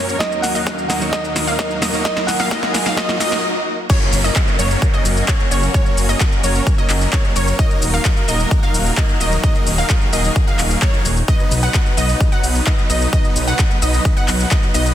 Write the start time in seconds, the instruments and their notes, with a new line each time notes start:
Already playing: string section F#2 F#3 C#4 A#4, clean electric guitar F#3 A#3 C#4 C#5, supersaw synth F#3 A#3 C#4 A#4 C#5, synth pluck C#5, fm electric piano C#5, riser
0.09 shaker
0.19 string section D#2 D#3 F#4, clean electric guitar F#3 A#3 D#4 A#4, supersaw synth F#3 A#3 D#4 A#4 D#5, fm electric piano D#5, synth pluck D#5, kick, snare, shaker
0.32 shaker
0.42 fm electric piano F#5, snare, open hi-hat, shaker
0.55 supersaw synth F#3 A#3 D#4 A#4 F5, synth pluck D#5, shaker
0.67 kick, snare, shaker
0.78 shaker
0.88 clean electric guitar F#3 A#3 D#4 A#4, supersaw synth F#3 A#3 D#4 A#4 D#5, synth pluck D#5, fm electric piano F#5, snare, open hi-hat, shaker
1.00 clean electric guitar F#3 A#3 D#4 C#5, shaker
1.11 clean electric guitar F#3 A#3 D#4 A#4, supersaw synth F#3 A#3 D#4 A#4 D#5, fm electric piano D#5, synth pluck D#5, kick, snare, shaker
1.24 shaker
1.36 snare, open hi-hat, shaker
1.47 supersaw synth F#3 A#3 D#4 A#4 F5, synth pluck F5, shaker
1.59 kick, snare, shaker
1.71 shaker
1.81 clean electric guitar F#3 A#3 D#4 A#4, supersaw synth F#3 A#3 D#4 A#4 D#5, synth pluck D#5, snare, open hi-hat, shaker
1.92 clean electric guitar F#3 A#3 D#4 C#5, shaker
2.04 clean electric guitar F#3 A#3, supersaw synth F#3 A#3 D#4 A#4 D#5, string section G#4, fm electric piano D#5, synth pluck D#5, kick, snare, shaker
2.17 snare, shaker
2.27 fm electric piano F#5, snare, open hi-hat, shaker
2.40 supersaw synth F#3 A#3 D#4 A#4 F5, synth pluck F5, snare, open hi-hat, shaker
2.50 clean electric guitar F#3 A#3 D#4 A#4, supersaw synth F#3 A#3 D#4 A#4 D#5, synth pluck D#5, kick, snare, shaker
2.63 snare, shaker
2.73 fm electric piano F#5, snare, open hi-hat, shaker
2.86 supersaw synth F#3 A#3 D#4 A#4 F5, synth pluck F5, snare, shaker
2.96 clean electric guitar F#3 A#3 D#4 A#4, supersaw synth F#3 A#3 D#4 A#4 D#5, fm electric piano D#5, synth pluck D#5, kick, snare, shaker
3.09 snare, shaker
3.19 clean electric guitar F#3 A#3 D#4 A#4, supersaw synth F#3 A#3 D#4 A#4 D#5, synth pluck D#5, snare, open hi-hat, shaker
3.32 snare, shaker
3.90 supersaw synth F#3 A#3 C#4 A#4 C#5, string section A#3 C#4 F#4, synth pluck C#5, kick, crash, downlifter, shaker
4.01 shaker
4.13 detuned saw bass F#1, open hi-hat, shaker
4.24 supersaw synth F#3 A#3 C#4 A#4 D#5, synth pluck D#5, shaker
4.36 kick, clap, shaker
4.48 shaker
4.59 detuned saw bass F#1, supersaw synth F#3 A#3 C#4 A#4 C#5, synth pluck C#5, open hi-hat, shaker
4.71 shaker
4.82 kick, shaker
4.93 supersaw synth F#3 A#3 C#4 A#4 D#5, synth pluck D#5, shaker
5.05 detuned saw bass F#1, open hi-hat, shaker
5.17 shaker
5.28 supersaw synth F#3 A#3 C#4 A#4 C#5, synth pluck C#5, kick, clap, shaker
5.40 shaker
5.51 detuned saw bass F#1, supersaw synth F#3 A#3 C#4 A#4 C#5, synth pluck C#5, open hi-hat, shaker
5.63 shaker
5.74 supersaw synth F#3 A#3 C#4 A#4 C#5, synth pluck C#5, kick, shaker
5.86 shaker
5.97 detuned saw bass F#1, open hi-hat, shaker
6.09 supersaw synth F#3 A#3 C#4 A#4 D#5, synth pluck D#5, shaker
6.21 kick, clap, shaker
6.32 shaker
6.44 detuned saw bass F#1, supersaw synth F#3 A#3 C#4 A#4 C#5, synth pluck C#5, open hi-hat, shaker
6.55 shaker
6.67 kick, shaker
6.78 supersaw synth F#3 A#3 C#4 A#4 D#5, synth pluck D#5, shaker
6.90 detuned saw bass F#1, clap, open hi-hat, shaker
7.01 shaker
7.13 supersaw synth F#3 A#3 C#4 A#4 C#5, synth pluck C#5, kick, clap, shaker
7.24 shaker
7.36 detuned saw bass F#1, supersaw synth F#3 A#3 C#4 A#4 C#5, synth pluck C#5, open hi-hat, shaker
7.48 shaker
7.59 string section D#3 D#4 F#4 A#4, supersaw synth F#3 A#3 D#4 A#4 D#5, synth pluck D#5, kick, shaker
7.71 shaker
7.82 detuned saw bass D#1, open hi-hat, shaker
7.93 supersaw synth F#3 A#3 D#4 A#4 F5, synth pluck F5, shaker
8.05 kick, clap, shaker
8.17 shaker
8.28 detuned saw bass D#1, supersaw synth F#3 A#3 D#4 A#4 D#5, synth pluck D#5, open hi-hat, shaker
8.40 shaker
8.51 kick, shaker
8.63 supersaw synth F#3 A#3 D#4 A#4 F5, synth pluck F5, shaker
8.74 detuned saw bass D#1, open hi-hat, shaker
8.86 shaker
8.97 supersaw synth F#3 A#3 D#4 A#4 D#5, synth pluck D#5, kick, clap, shaker
9.09 shaker
9.20 detuned saw bass D#1, supersaw synth F#3 A#3 D#4 A#4 D#5, synth pluck D#5, open hi-hat, shaker
9.32 shaker
9.44 supersaw synth F#3 A#3 D#4 A#4 D#5, string section G#4, synth pluck D#5, kick, shaker
9.55 shaker
9.67 detuned saw bass D#1, open hi-hat, shaker
9.78 supersaw synth F#3 A#3 D#4 A#4 F5, synth pluck F5, shaker
9.90 kick, clap, shaker
10.01 shaker
10.13 detuned saw bass D#1, supersaw synth F#3 A#3 D#4 A#4 D#5, synth pluck D#5, open hi-hat, shaker
10.25 shaker
10.36 kick, shaker
10.47 supersaw synth F#3 A#3 D#4 A#4 F5, synth pluck F5, shaker
10.59 detuned saw bass D#1, clap, open hi-hat, shaker
10.71 shaker
10.82 supersaw synth F#3 A#3 D#4 A#4 C#5, synth pluck C#5, kick, clap, shaker
10.94 shaker
11.05 detuned saw bass D#1, open hi-hat, shaker
11.17 shaker
11.28 supersaw synth F#3 B3 D#4 B4 D#5, string section F#3 B3, synth pluck D#5, kick, shaker
11.40 shaker
11.51 detuned saw bass B1, open hi-hat, shaker
11.63 supersaw synth F#3 B3 D#4 B4 F#5, synth pluck F#5, shaker
11.74 kick, clap, shaker
11.86 shaker
11.97 detuned saw bass B1, supersaw synth F#3 B3 D#4 B4 D#5, synth pluck D#5, open hi-hat, shaker
12.09 shaker
12.21 kick, shaker
12.32 supersaw synth F#3 B3 D#4 B4 F#5, synth pluck F#5, shaker
12.44 detuned saw bass B1, open hi-hat, shaker
12.55 shaker
12.67 supersaw synth F#3 B3 D#4 B4 D#5, synth pluck D#5, kick, clap, shaker
12.78 shaker
12.90 detuned saw bass B1, supersaw synth F#3 B3 D#4 B4 D#5, synth pluck D#5, open hi-hat, shaker
13.01 shaker
13.13 supersaw synth F#3 B3 D#4 B4 D#5, synth pluck D#5, kick, shaker
13.25 shaker
13.36 detuned saw bass B1, open hi-hat, shaker
13.47 supersaw synth F#3 B3 D#4 B4 F#5, synth pluck F#5, shaker
13.59 kick, clap, shaker
13.71 shaker
13.82 detuned saw bass B1, supersaw synth F#3 B3 D#4 B4 D#5, synth pluck D#5, open hi-hat, shaker
13.94 shaker
14.05 kick, shaker
14.17 supersaw synth F#3 B3 D#4 B4 F#5, synth pluck F#5, shaker
14.28 detuned saw bass B1, clap, open hi-hat, shaker
14.40 shaker
14.51 supersaw synth F#3 B3 D#4 B4 D#5, synth pluck D#5, kick, clap, shaker
14.63 shaker
14.74 detuned saw bass B1, supersaw synth F#3 B3 D#4 B4 D#5, synth pluck D#5, open hi-hat, shaker
14.86 shaker